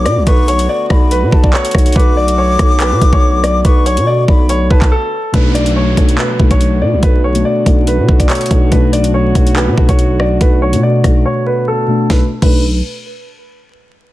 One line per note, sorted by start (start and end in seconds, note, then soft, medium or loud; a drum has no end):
0.00 1.92 D3 medium
0.00 5.17 A3 medium
0.00 1.92 B3 medium
0.00 5.17 F#4 medium
0.00 0.23 D6 loud
0.06 0.18 B2 loud
0.06 0.23 D5 medium
0.06 cross-stick medium
0.06 closed hi-hat medium
0.17 0.26 B1 loud
0.27 0.67 B1 loud
0.27 0.44 B4 medium
0.27 0.86 C#6 loud
0.27 kick loud
0.27 closed hi-hat medium
0.48 0.65 C#5 medium
0.48 closed hi-hat medium
0.59 closed hi-hat medium
0.69 1.09 D5 medium
0.90 1.24 B1 loud
0.90 1.30 B5 medium
0.90 kick medium
0.90 cross-stick loud
1.11 1.42 B4 medium
1.11 closed hi-hat medium
1.23 1.32 B2 loud
1.32 1.53 B1 loud
1.32 1.52 A5 medium
1.32 kick loud
1.43 1.52 D5 medium
1.43 kick loud
1.54 1.93 C#5 medium
1.54 clap loud
1.65 closed hi-hat medium
1.71 1.95 B1 loud
1.71 kick loud
1.71 cross-stick medium
1.71 closed hi-hat medium
1.78 closed hi-hat medium
1.86 closed hi-hat medium
1.93 2.57 B1 loud
1.93 5.17 D3 medium
1.93 5.17 B3 medium
1.93 2.13 B4 medium
1.93 3.61 D6 loud
1.93 kick loud
1.93 closed hi-hat medium
2.00 closed hi-hat soft
2.17 2.34 D5 medium
2.28 closed hi-hat medium
2.38 2.78 C#5 medium
2.59 2.93 B1 loud
2.59 kick medium
2.59 cross-stick loud
2.59 closed hi-hat medium
2.80 3.11 B4 medium
2.80 clap loud
2.80 closed hi-hat medium
2.92 3.01 B2 loud
3.01 3.12 B1 loud
3.01 kick loud
3.01 closed hi-hat medium
3.13 3.63 B1 loud
3.13 3.42 C#5 medium
3.13 kick medium
3.44 3.61 D5 medium
3.44 cross-stick medium
3.44 closed hi-hat medium
3.65 3.99 B1 loud
3.65 3.82 B4 medium
3.65 4.24 C#6 loud
3.65 kick loud
3.65 closed hi-hat medium
3.86 4.03 C#5 medium
3.86 closed hi-hat medium
3.97 4.27 B2 loud
3.97 closed hi-hat medium
4.07 4.47 D5 medium
4.28 4.69 B1 loud
4.28 4.68 B5 medium
4.28 kick loud
4.49 4.66 C#5 medium
4.49 closed hi-hat medium
4.70 4.81 B1 loud
4.70 4.87 B4 medium
4.70 4.91 A5 medium
4.70 kick loud
4.82 4.92 B1 loud
4.82 kick loud
4.82 clap medium
4.92 5.31 A4 medium
5.32 5.95 B1 loud
5.32 5.75 B2 loud
5.32 12.06 D3 medium
5.32 12.06 A3 medium
5.32 5.76 A3 medium
5.32 12.06 B3 medium
5.32 5.77 D4 loud
5.32 12.06 F#4 medium
5.32 5.51 B4 medium
5.32 kick loud
5.32 closed hi-hat medium
5.32 downlifter medium
5.55 5.72 D5 medium
5.55 closed hi-hat medium
5.66 closed hi-hat medium
5.76 6.16 C#5 medium
5.96 6.17 B1 loud
5.96 6.25 B2 medium
5.96 6.26 A3 medium
5.96 6.27 D4 medium
5.96 kick medium
5.96 closed hi-hat medium
6.09 closed hi-hat medium
6.18 6.49 B4 medium
6.18 clap loud
6.38 6.83 B1 loud
6.38 6.96 B2 medium
6.38 6.96 A3 medium
6.38 6.97 D4 medium
6.38 kick medium
6.51 6.80 C#5 medium
6.51 kick medium
6.51 closed hi-hat medium
6.61 closed hi-hat medium
6.82 6.94 B2 loud
6.82 6.99 D5 medium
6.93 7.02 B1 loud
7.03 7.43 B1 loud
7.03 7.20 B4 medium
7.03 kick loud
7.03 closed hi-hat medium
7.24 7.41 C#5 medium
7.34 7.56 B2 medium
7.34 7.56 A3 medium
7.34 7.57 D4 medium
7.34 closed hi-hat medium
7.45 7.85 D5 medium
7.65 8.00 B1 loud
7.65 8.22 B2 medium
7.65 8.23 A3 medium
7.65 8.24 D4 medium
7.65 kick medium
7.65 closed hi-hat medium
7.87 8.18 B4 medium
7.87 closed hi-hat medium
7.99 8.08 B2 loud
8.08 8.29 B1 loud
8.08 kick medium
8.19 8.28 D5 medium
8.19 kick medium
8.19 closed hi-hat medium
8.30 8.69 C#5 medium
8.30 clap loud
8.30 closed hi-hat medium
8.35 closed hi-hat medium
8.41 closed hi-hat medium
8.46 8.65 B2 medium
8.46 closed hi-hat medium
8.51 8.71 B1 loud
8.51 8.65 A3 medium
8.51 8.66 D4 medium
8.51 kick loud
8.51 closed hi-hat medium
8.70 9.33 B1 loud
8.70 9.13 B2 loud
8.70 9.14 A3 medium
8.70 9.15 D4 loud
8.70 8.89 B4 medium
8.70 kick loud
8.70 closed hi-hat medium
8.93 9.10 D5 medium
8.93 closed hi-hat medium
9.04 closed hi-hat medium
9.14 9.54 C#5 medium
9.34 9.69 B1 loud
9.34 9.63 B2 medium
9.34 9.64 A3 medium
9.34 9.65 D4 medium
9.34 kick loud
9.34 closed hi-hat medium
9.47 closed hi-hat medium
9.56 9.87 B4 medium
9.56 clap loud
9.68 9.77 B2 loud
9.76 9.88 B1 loud
9.76 10.34 B2 medium
9.76 10.34 A3 medium
9.76 10.35 D4 medium
9.76 kick medium
9.89 10.39 B1 loud
9.89 10.18 C#5 medium
9.89 kick medium
9.89 closed hi-hat medium
9.99 closed hi-hat medium
10.20 10.37 D5 medium
10.20 cross-stick medium
10.41 10.75 B1 loud
10.41 10.58 B4 medium
10.41 kick loud
10.41 closed hi-hat medium
10.62 10.79 C#5 medium
10.72 10.94 B2 medium
10.72 11.03 B2 medium
10.72 10.94 A3 medium
10.72 10.95 D4 medium
10.72 closed hi-hat medium
10.83 11.23 D5 medium
11.03 11.25 B1 loud
11.03 11.61 B2 medium
11.03 11.61 A3 medium
11.03 11.62 D4 medium
11.03 kick loud
11.03 cross-stick loud
11.03 closed hi-hat medium
11.25 11.43 C#5 medium
11.46 11.64 B4 medium
11.68 12.07 A4 medium
11.87 12.03 B2 medium
11.87 12.03 A3 medium
11.87 12.04 D4 medium
12.10 12.22 B1 loud
12.10 12.22 B2 medium
12.10 12.30 D3 medium
12.10 12.30 A3 medium
12.10 12.22 A3 medium
12.10 12.30 B3 medium
12.10 12.22 D4 medium
12.10 12.30 F#4 medium
12.10 12.22 B4 medium
12.10 kick loud
12.10 snare medium
12.42 12.82 B1 loud
12.42 12.62 B2 medium
12.42 12.62 A3 medium
12.42 12.62 D4 loud
12.42 12.62 B4 medium
12.42 kick loud
12.42 crash medium